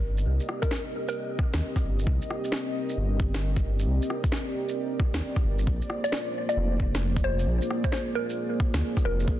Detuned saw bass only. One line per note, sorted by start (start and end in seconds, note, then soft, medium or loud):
0.00 0.25 G1 medium
0.26 0.39 C2 loud
1.54 1.61 D#2 medium
1.85 2.05 G1 medium
2.07 2.20 C2 medium
2.97 3.86 G1 medium
3.87 4.00 C2 loud
5.14 5.21 D#2 medium
5.44 5.66 G1 medium
5.67 5.80 A#1 loud
6.57 7.46 F1 medium
7.47 7.60 A#1 loud
8.74 8.82 D2 medium
9.05 9.26 F1 medium
9.28 9.40 A#1 loud